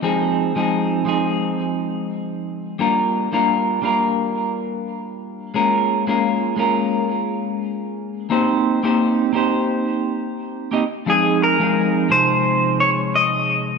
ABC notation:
X:1
M:4/4
L:1/16
Q:"Swing 16ths" 1/4=87
K:Fm
V:1 name="Clean electric guitar"
z16 | z16 | z16 | z16 |
A2 B4 c4 d2 e4 |]
V:2 name="Clean electric guitar"
[F,A,CEA]3 [F,A,CEA]3 [F,A,CEA]8- [F,A,CEA]2 | [G,B,=DFB]3 [G,B,DFB]3 [G,B,DFB]8- [G,B,DFB]2 | [A,B,DFB]3 [A,B,DFB]3 [A,B,DFB]8- [A,B,DFB]2 | [B,CEGc]3 [B,CEGc]3 [B,CEGc]8 [B,CEGe] z |
[F,A,CEA]3 [F,A,CEA]3 [C,F,A,EA]8- [C,F,A,EA]2 |]